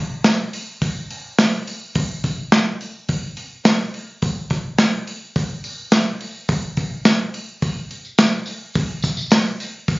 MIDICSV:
0, 0, Header, 1, 2, 480
1, 0, Start_track
1, 0, Tempo, 566572
1, 694, Time_signature, 4, 2, 24, 8
1, 8466, End_track
2, 0, Start_track
2, 0, Title_t, "Drums"
2, 206, Note_on_c, 9, 46, 78
2, 207, Note_on_c, 9, 38, 107
2, 291, Note_off_c, 9, 46, 0
2, 292, Note_off_c, 9, 38, 0
2, 451, Note_on_c, 9, 46, 61
2, 536, Note_off_c, 9, 46, 0
2, 692, Note_on_c, 9, 46, 72
2, 693, Note_on_c, 9, 36, 101
2, 776, Note_off_c, 9, 46, 0
2, 777, Note_off_c, 9, 36, 0
2, 936, Note_on_c, 9, 46, 51
2, 1021, Note_off_c, 9, 46, 0
2, 1173, Note_on_c, 9, 46, 84
2, 1174, Note_on_c, 9, 38, 110
2, 1258, Note_off_c, 9, 46, 0
2, 1259, Note_off_c, 9, 38, 0
2, 1418, Note_on_c, 9, 46, 57
2, 1503, Note_off_c, 9, 46, 0
2, 1653, Note_on_c, 9, 46, 84
2, 1657, Note_on_c, 9, 36, 117
2, 1738, Note_off_c, 9, 46, 0
2, 1741, Note_off_c, 9, 36, 0
2, 1897, Note_on_c, 9, 46, 53
2, 1898, Note_on_c, 9, 36, 83
2, 1982, Note_off_c, 9, 36, 0
2, 1982, Note_off_c, 9, 46, 0
2, 2136, Note_on_c, 9, 38, 112
2, 2136, Note_on_c, 9, 46, 72
2, 2220, Note_off_c, 9, 46, 0
2, 2221, Note_off_c, 9, 38, 0
2, 2379, Note_on_c, 9, 46, 57
2, 2464, Note_off_c, 9, 46, 0
2, 2615, Note_on_c, 9, 46, 67
2, 2618, Note_on_c, 9, 36, 97
2, 2699, Note_off_c, 9, 46, 0
2, 2703, Note_off_c, 9, 36, 0
2, 2854, Note_on_c, 9, 46, 54
2, 2939, Note_off_c, 9, 46, 0
2, 3093, Note_on_c, 9, 46, 75
2, 3094, Note_on_c, 9, 38, 112
2, 3178, Note_off_c, 9, 46, 0
2, 3179, Note_off_c, 9, 38, 0
2, 3338, Note_on_c, 9, 46, 54
2, 3423, Note_off_c, 9, 46, 0
2, 3576, Note_on_c, 9, 46, 75
2, 3580, Note_on_c, 9, 36, 116
2, 3661, Note_off_c, 9, 46, 0
2, 3664, Note_off_c, 9, 36, 0
2, 3813, Note_on_c, 9, 46, 54
2, 3818, Note_on_c, 9, 36, 86
2, 3898, Note_off_c, 9, 46, 0
2, 3903, Note_off_c, 9, 36, 0
2, 4053, Note_on_c, 9, 46, 71
2, 4054, Note_on_c, 9, 38, 106
2, 4138, Note_off_c, 9, 46, 0
2, 4139, Note_off_c, 9, 38, 0
2, 4298, Note_on_c, 9, 46, 61
2, 4383, Note_off_c, 9, 46, 0
2, 4539, Note_on_c, 9, 46, 70
2, 4540, Note_on_c, 9, 36, 101
2, 4624, Note_off_c, 9, 46, 0
2, 4625, Note_off_c, 9, 36, 0
2, 4778, Note_on_c, 9, 46, 54
2, 4863, Note_off_c, 9, 46, 0
2, 5014, Note_on_c, 9, 46, 80
2, 5015, Note_on_c, 9, 38, 107
2, 5099, Note_off_c, 9, 46, 0
2, 5100, Note_off_c, 9, 38, 0
2, 5259, Note_on_c, 9, 46, 57
2, 5343, Note_off_c, 9, 46, 0
2, 5496, Note_on_c, 9, 46, 83
2, 5498, Note_on_c, 9, 36, 118
2, 5581, Note_off_c, 9, 46, 0
2, 5583, Note_off_c, 9, 36, 0
2, 5735, Note_on_c, 9, 46, 55
2, 5738, Note_on_c, 9, 36, 80
2, 5819, Note_off_c, 9, 46, 0
2, 5823, Note_off_c, 9, 36, 0
2, 5974, Note_on_c, 9, 46, 73
2, 5975, Note_on_c, 9, 38, 111
2, 6059, Note_off_c, 9, 46, 0
2, 6060, Note_off_c, 9, 38, 0
2, 6219, Note_on_c, 9, 46, 63
2, 6303, Note_off_c, 9, 46, 0
2, 6458, Note_on_c, 9, 46, 74
2, 6459, Note_on_c, 9, 36, 101
2, 6543, Note_off_c, 9, 36, 0
2, 6543, Note_off_c, 9, 46, 0
2, 6699, Note_on_c, 9, 46, 54
2, 6784, Note_off_c, 9, 46, 0
2, 6818, Note_on_c, 9, 54, 27
2, 6903, Note_off_c, 9, 54, 0
2, 6930, Note_on_c, 9, 54, 87
2, 6935, Note_on_c, 9, 38, 107
2, 6935, Note_on_c, 9, 46, 79
2, 7015, Note_off_c, 9, 54, 0
2, 7019, Note_off_c, 9, 46, 0
2, 7020, Note_off_c, 9, 38, 0
2, 7048, Note_on_c, 9, 54, 27
2, 7133, Note_off_c, 9, 54, 0
2, 7164, Note_on_c, 9, 54, 71
2, 7178, Note_on_c, 9, 46, 53
2, 7249, Note_off_c, 9, 54, 0
2, 7263, Note_off_c, 9, 46, 0
2, 7405, Note_on_c, 9, 54, 29
2, 7416, Note_on_c, 9, 46, 78
2, 7417, Note_on_c, 9, 36, 121
2, 7490, Note_off_c, 9, 54, 0
2, 7501, Note_off_c, 9, 46, 0
2, 7502, Note_off_c, 9, 36, 0
2, 7646, Note_on_c, 9, 54, 70
2, 7656, Note_on_c, 9, 36, 82
2, 7656, Note_on_c, 9, 46, 53
2, 7731, Note_off_c, 9, 54, 0
2, 7741, Note_off_c, 9, 36, 0
2, 7741, Note_off_c, 9, 46, 0
2, 7768, Note_on_c, 9, 54, 78
2, 7853, Note_off_c, 9, 54, 0
2, 7884, Note_on_c, 9, 54, 93
2, 7892, Note_on_c, 9, 46, 75
2, 7893, Note_on_c, 9, 38, 105
2, 7969, Note_off_c, 9, 54, 0
2, 7977, Note_off_c, 9, 46, 0
2, 7978, Note_off_c, 9, 38, 0
2, 8010, Note_on_c, 9, 54, 27
2, 8095, Note_off_c, 9, 54, 0
2, 8134, Note_on_c, 9, 46, 60
2, 8136, Note_on_c, 9, 54, 74
2, 8219, Note_off_c, 9, 46, 0
2, 8221, Note_off_c, 9, 54, 0
2, 8371, Note_on_c, 9, 46, 71
2, 8373, Note_on_c, 9, 36, 99
2, 8456, Note_off_c, 9, 46, 0
2, 8457, Note_off_c, 9, 36, 0
2, 8466, End_track
0, 0, End_of_file